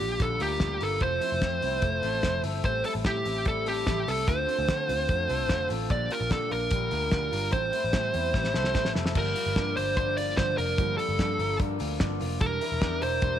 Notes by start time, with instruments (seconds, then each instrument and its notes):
Already playing: clean electric guitar A#2 D4, lead electric guitar G4
0.00 picked electric bass A#1, steel-string acoustic guitar G3 D4 F4
0.20 picked electric bass A#1, steel-string acoustic guitar D3 G3 D4 F4, lead electric guitar A4, kick, closed hi-hat
0.40 picked electric bass D2, steel-string acoustic guitar G3 D4 F4, lead electric guitar G4, clean electric guitar A#4, open hi-hat
0.60 picked electric bass D2, steel-string acoustic guitar A#2 D3 G3 D4 F4, kick, snare, closed hi-hat
0.81 picked electric bass G1, steel-string acoustic guitar G3 D4 F4, lead electric guitar A4, clean electric guitar A#4, open hi-hat
1.01 picked electric bass F1, steel-string acoustic guitar F3 A3 C4 E4, lead electric guitar C5, kick, closed hi-hat
1.21 steel-string acoustic guitar A3 C4 E4, open hi-hat
1.32 picked electric bass F1
1.41 picked electric bass F2, steel-string acoustic guitar F3 A3 C4 E4, kick, snare, closed hi-hat
1.61 picked electric bass C2, steel-string acoustic guitar A3 C4 E4, open hi-hat
1.81 picked electric bass F1, steel-string acoustic guitar F3 A3 C4 E4, kick, closed hi-hat
2.02 picked electric bass A1, steel-string acoustic guitar A3 C4 E4, clean electric guitar A4, open hi-hat
2.22 picked electric bass F1, steel-string acoustic guitar F3 A3 C4 E4, kick, snare, closed hi-hat
2.42 picked electric bass G1, steel-string acoustic guitar A3 C4 E4, clean electric guitar A4, open hi-hat
2.63 picked electric bass A1, steel-string acoustic guitar A2 E3 G3 C4 E4, lead electric guitar C5, kick, closed hi-hat
2.84 steel-string acoustic guitar G3 C4 E4, lead electric guitar A4, open hi-hat
2.95 picked electric bass A1
3.04 steel-string acoustic guitar A2 E3 G3 C4 E4, picked electric bass A2, lead electric guitar G4, kick, snare, closed hi-hat
3.25 picked electric bass A1, steel-string acoustic guitar G3 C4 E4, open hi-hat
3.45 steel-string acoustic guitar E3 G3 C4 E4, lead electric guitar A4, kick, closed hi-hat
3.66 steel-string acoustic guitar G3 C4 E4, lead electric guitar G4, clean electric guitar A4, open hi-hat
3.86 picked electric bass A1, steel-string acoustic guitar A2 E3 G3 C4 E4, kick, snare, closed hi-hat
4.06 picked electric bass C2, steel-string acoustic guitar G3 C4 E4, clean electric guitar A4, lead electric guitar A4, open hi-hat
4.27 picked electric bass D2, steel-string acoustic guitar D3 A3 C4 F4, lead electric guitar C5, kick, closed hi-hat
4.47 steel-string acoustic guitar A3 C4 F4, open hi-hat
4.59 picked electric bass D2
4.67 steel-string acoustic guitar D3 A3 C4 F4, picked electric bass D3, kick, snare, closed hi-hat
4.88 picked electric bass D2, steel-string acoustic guitar A3 C4 F4, open hi-hat
5.08 picked electric bass F2, steel-string acoustic guitar D3 A3 C4 F4, kick, closed hi-hat
5.28 picked electric bass C2, steel-string acoustic guitar A3 C4 F4, clean electric guitar A4, open hi-hat
5.49 picked electric bass F1, steel-string acoustic guitar D3 A3 C4 F4, kick, snare, closed hi-hat
5.68 picked electric bass A1, steel-string acoustic guitar A3 C4 F4, clean electric guitar A4, open hi-hat
5.89 picked electric bass A#1, steel-string acoustic guitar A#2 D3 G3 D4 F4, lead electric guitar D5, kick, closed hi-hat
6.09 steel-string acoustic guitar G3 D4 F4, lead electric guitar A#4, open hi-hat
6.21 picked electric bass A#1
6.29 steel-string acoustic guitar A#2 D3 G3 D4 F4, picked electric bass A#2, lead electric guitar A4, kick, snare, closed hi-hat
6.50 picked electric bass A#1, steel-string acoustic guitar G3 D4 F4, lead electric guitar A#4, open hi-hat
6.71 picked electric bass A#1, steel-string acoustic guitar D3 G3 D4 F4, kick, closed hi-hat
6.91 picked electric bass D2, steel-string acoustic guitar G3 D4 F4, clean electric guitar A#4, open hi-hat
7.11 picked electric bass D2, steel-string acoustic guitar A#2 D3 G3 D4 F4, kick, snare, closed hi-hat
7.31 picked electric bass G1, steel-string acoustic guitar G3 D4 F4, clean electric guitar A#4, open hi-hat
7.51 picked electric bass A1, steel-string acoustic guitar A2 E3 G3 C4 E4, lead electric guitar C5, kick, closed hi-hat
7.72 steel-string acoustic guitar G3 C4 E4, open hi-hat
7.84 picked electric bass A1
7.93 steel-string acoustic guitar A2 E3 G3 C4 E4, picked electric bass A2, kick, snare, closed hi-hat
8.13 picked electric bass E2, steel-string acoustic guitar G3 C4 E4, open hi-hat
8.34 picked electric bass A1, steel-string acoustic guitar E3 G3 C4 E4, kick, snare
8.44 snare
8.54 picked electric bass C2, steel-string acoustic guitar G3 C4 E4, clean electric guitar A4, snare
8.64 snare
8.74 picked electric bass A1, steel-string acoustic guitar A2 E3 G3 C4 E4, kick, snare
8.85 snare
8.94 picked electric bass F1, steel-string acoustic guitar G3 C4 E4, clean electric guitar A4, snare
9.06 snare
9.14 picked electric bass G1, steel-string acoustic guitar G2 D3 F3 A#3 F4, clean electric guitar G3, lead electric guitar A#4, kick, crash
9.35 steel-string acoustic guitar F3 A#3 F4, open hi-hat
9.46 picked electric bass G1
9.55 steel-string acoustic guitar G2 D3 F3 A#3 F4, picked electric bass G2, clean electric guitar D4, kick, snare, closed hi-hat
9.76 picked electric bass G1, steel-string acoustic guitar F3 A#3 F4, lead electric guitar C5, open hi-hat
9.96 steel-string acoustic guitar D3 F3 A#3 F4, clean electric guitar D4, lead electric guitar C5, kick, closed hi-hat
10.16 steel-string acoustic guitar F3 A#3 F4, lead electric guitar D5, open hi-hat
10.37 picked electric bass G1, steel-string acoustic guitar G2 D3 F3 A#3 F4, clean electric guitar D4, lead electric guitar C5, kick, snare, closed hi-hat
10.57 picked electric bass F1, steel-string acoustic guitar F3 A#3 F4, lead electric guitar A#4, open hi-hat
10.78 picked electric bass G1, steel-string acoustic guitar G2 D3 F3 A#3 F4, clean electric guitar G3, kick, closed hi-hat
10.97 steel-string acoustic guitar F3 A#3 F4, lead electric guitar A4, open hi-hat
11.09 picked electric bass G1
11.18 steel-string acoustic guitar G2 D3 F3 A#3 F4, picked electric bass G2, clean electric guitar D4, kick, snare, closed hi-hat
11.38 picked electric bass G1, steel-string acoustic guitar F3 A#3 F4, clean electric guitar A#4, open hi-hat
11.59 picked electric bass G2, steel-string acoustic guitar D3 F3 A#3 F4, clean electric guitar D4, kick, closed hi-hat
11.79 picked electric bass D2, steel-string acoustic guitar F3 A#3 F4, open hi-hat
12.00 picked electric bass G1, steel-string acoustic guitar G2 D3 F3 A#3 F4, clean electric guitar D4, kick, snare, closed hi-hat
12.20 picked electric bass F1, steel-string acoustic guitar F3 A#3 F4, open hi-hat
12.40 picked electric bass E1, steel-string acoustic guitar E3 G3 D4 E4 A#4, lead electric guitar A#4, kick, closed hi-hat
12.61 steel-string acoustic guitar D4 E4 A#4, open hi-hat
12.72 picked electric bass E1
12.81 picked electric bass E2, steel-string acoustic guitar E3 G3 D4 E4 A#4, kick, snare, closed hi-hat
13.01 picked electric bass E1, steel-string acoustic guitar D4 E4 A#4, lead electric guitar C5, open hi-hat
13.22 picked electric bass E1, steel-string acoustic guitar G3 D4 E4 A#4, kick, closed hi-hat